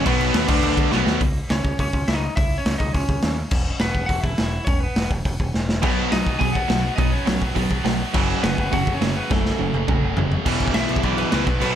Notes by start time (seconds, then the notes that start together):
0.05 B1 B2 F#3 B3 B4, kick, crash
0.19 B1, crash
0.34 D#2, snare, crash
0.47 D2 D3 A3 D4, kick, crash
0.63 D2, crash
0.77 D2, kick, crash
0.91 B1 B2 F#3 B3, snare
1.06 D#2, snare
1.21 C#2, kick, open hi-hat
1.50 C#2 C#4 C#5, snare, open hi-hat
1.64 C#2, kick
1.79 C#2 C#4 C#5, kick, open hi-hat
1.93 C#2, kick
2.08 C#2 E4 E5, snare, open hi-hat
2.14 D#4 D#5
2.36 C#2 E4 E5, kick, open hi-hat
2.58 C#4 C#5
2.66 C#2, snare, open hi-hat
2.78 C#2 D#4 D#5, kick
2.93 C#2 C#4 C#5, kick, open hi-hat
3.09 C#2, kick
3.22 D#2, snare, open hi-hat
3.51 E1, kick, crash
3.79 E1 B3 B4, snare, open hi-hat
3.95 E1, kick
4.06 E1 F#4 F#5, kick, open hi-hat
4.21 E1 E4 E5, kick
4.38 E1, snare, open hi-hat
4.65 E1 C#4 C#5, kick, open hi-hat
4.80 B3 B4
4.96 E1, snare, open hi-hat
5.11 E1, kick
5.25 E1, kick, open hi-hat
5.40 E1, kick
5.54 E1, snare
5.69 snare
5.82 B1 B2 F#3 B3, kick, crash
6.11 B1 B2 F#3 D#4 D#5, snare, open hi-hat
6.26 B1, kick
6.39 B1 B2 F#3 G#4 G#5, kick, open hi-hat
6.43 B3
6.53 B1 F#4 F#5, kick
6.69 B1 B2 F#3, snare, open hi-hat
6.96 B1 B2 F#3 D#4 D#5, kick, open hi-hat
7.00 B3
7.11 C#4 C#5
7.27 B1 B2 F#3, snare, open hi-hat
7.42 B1, kick
7.56 B1 B2 F#3 B3, kick, open hi-hat
7.71 B1, kick
7.85 B1 B2 F#3, snare, open hi-hat
8.14 F#1 F#2 C#3 F#3, kick, crash
8.43 F#1 F#2 C#3 B3 B4, snare, open hi-hat
8.58 F#1, kick
8.72 F#1 F#2 C#3 F#3 F#4 F#5, kick, open hi-hat
8.87 F#1, kick
8.94 C#4 C#5
9.01 F#1 F#2 C#3, snare, open hi-hat
9.16 B3 B4
9.31 F#1 F#2 C#3 F#3 A3 A4, kick, snare
9.46 snare
9.59 F#1 F#2 C#3
9.74 F#1, high tom
9.88 F#1 F#2 C#3 F#3, kick, mid tom
10.04 F#1
10.17 F#1 F#2 C#3, floor tom
10.32 floor tom
10.46 E1 E2 B2 E3, kick, crash
10.60 E1, kick, crash
10.68 kick
10.74 B1 E2 B2 E3 E5, snare, crash
10.89 B1, crash
10.96 kick
11.03 B1 E2 B2 E3 D5, kick, crash
11.18 B4, crash
11.31 C#2 E2 B2 E3 B4, snare, crash
11.45 B1 B2 F#3 B3, kick, crash
11.60 B1 B2 F#3 B3, crash